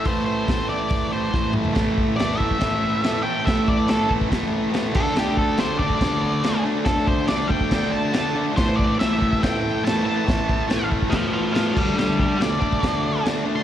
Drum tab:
CC |----------------|x---x---x---x---|x---x---x---x-x-|x---x---x---x---|
HH |o---o---o-------|----------------|----------------|----------------|
SD |----o-------o---|o---o---o---o---|o---o---o---o---|o---o---o---o---|
T2 |--------------o-|----------------|----------------|----------------|
FT |---------------o|----------------|----------------|----------------|
BD |o---o---o---o---|o-o---ooo-------|o-o---ooo-----o-|--o---ooo-------|

CC |x---x---x---x---|x---x---x---x---|x---x---x---x-x-|x---x---x---x---|
HH |----------------|----------------|----------------|----------------|
SD |o---o---o---o---|o---o---o---o---|o---o---o---o---|o---o---o---o---|
T2 |----------------|----------------|----------------|----------------|
FT |----------------|----------------|----------------|----------------|
BD |o-o---ooo-------|o-o---ooo-------|o-o---ooo-----o-|--o---ooo-------|